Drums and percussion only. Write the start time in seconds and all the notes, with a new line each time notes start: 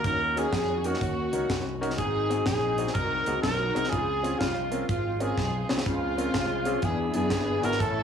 0.04 kick, closed hi-hat
0.37 closed hi-hat
0.53 kick, snare, closed hi-hat
0.84 closed hi-hat
0.94 snare
1.01 kick, closed hi-hat
1.33 closed hi-hat
1.50 kick, snare, closed hi-hat
1.83 closed hi-hat
1.90 snare
1.98 kick, closed hi-hat
2.31 closed hi-hat
2.46 kick, snare, closed hi-hat
2.78 closed hi-hat
2.87 snare
2.95 kick, closed hi-hat
3.26 closed hi-hat
3.43 kick, snare, closed hi-hat
3.76 closed hi-hat
3.84 snare
3.92 kick, closed hi-hat
4.24 closed hi-hat
4.41 kick, snare, closed hi-hat
4.72 closed hi-hat
4.89 kick, closed hi-hat
5.20 closed hi-hat
5.38 kick, snare
5.69 snare
5.78 snare
5.86 kick, closed hi-hat
6.18 closed hi-hat
6.34 kick, snare, closed hi-hat
6.65 closed hi-hat
6.82 kick, closed hi-hat
7.14 closed hi-hat
7.30 kick, snare, closed hi-hat
7.64 closed hi-hat
7.72 snare
7.80 kick, closed hi-hat